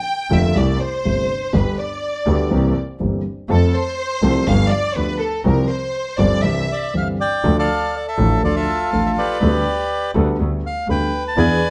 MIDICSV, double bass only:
0, 0, Header, 1, 2, 480
1, 0, Start_track
1, 0, Tempo, 491400
1, 1505, Time_signature, 4, 2, 24, 8
1, 11430, End_track
2, 0, Start_track
2, 0, Title_t, "Double bass"
2, 0, Program_c, 0, 43
2, 298, Note_on_c, 0, 29, 86
2, 502, Note_off_c, 0, 29, 0
2, 536, Note_on_c, 0, 36, 101
2, 741, Note_off_c, 0, 36, 0
2, 1024, Note_on_c, 0, 31, 52
2, 1227, Note_off_c, 0, 31, 0
2, 1503, Note_on_c, 0, 31, 89
2, 1704, Note_off_c, 0, 31, 0
2, 2212, Note_on_c, 0, 38, 89
2, 2413, Note_off_c, 0, 38, 0
2, 2447, Note_on_c, 0, 36, 104
2, 2650, Note_off_c, 0, 36, 0
2, 2930, Note_on_c, 0, 31, 56
2, 3130, Note_off_c, 0, 31, 0
2, 3406, Note_on_c, 0, 41, 94
2, 3607, Note_off_c, 0, 41, 0
2, 4125, Note_on_c, 0, 36, 91
2, 4324, Note_off_c, 0, 36, 0
2, 4366, Note_on_c, 0, 31, 106
2, 4565, Note_off_c, 0, 31, 0
2, 4843, Note_on_c, 0, 38, 65
2, 5044, Note_off_c, 0, 38, 0
2, 5319, Note_on_c, 0, 36, 97
2, 5521, Note_off_c, 0, 36, 0
2, 6039, Note_on_c, 0, 31, 87
2, 6246, Note_off_c, 0, 31, 0
2, 7268, Note_on_c, 0, 38, 92
2, 7474, Note_off_c, 0, 38, 0
2, 7992, Note_on_c, 0, 33, 93
2, 8196, Note_off_c, 0, 33, 0
2, 8231, Note_on_c, 0, 38, 69
2, 8435, Note_off_c, 0, 38, 0
2, 8707, Note_on_c, 0, 33, 58
2, 8914, Note_off_c, 0, 33, 0
2, 9193, Note_on_c, 0, 38, 104
2, 9394, Note_off_c, 0, 38, 0
2, 9909, Note_on_c, 0, 38, 107
2, 10108, Note_off_c, 0, 38, 0
2, 10148, Note_on_c, 0, 38, 66
2, 10346, Note_off_c, 0, 38, 0
2, 10619, Note_on_c, 0, 38, 67
2, 10820, Note_off_c, 0, 38, 0
2, 11097, Note_on_c, 0, 40, 101
2, 11298, Note_off_c, 0, 40, 0
2, 11430, End_track
0, 0, End_of_file